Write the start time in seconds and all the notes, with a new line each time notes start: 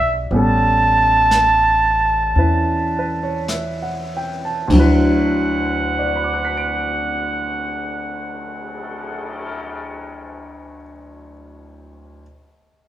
Already playing: G3 D4 F#4 A4 E5
0.00 B1
0.30 A1 G3 B3, brush sweep
0.34 C#4 A4 A5
1.31 snare, hi-hat pedal
2.36 E2 C#4 E4 B4, brush sweep
2.99 B4
3.23 C#5
3.48 E5, snare, hi-hat pedal
3.82 F#5
4.17 G5
4.45 A5
4.68 D2 D3, kick, ride
4.73 F#3 E4 F#5
4.80 B4
5.58 cymbal swell
5.99 D5
6.07 F#5
6.16 B5
6.24 D6
6.34 F#6
6.45 B6
6.57 D7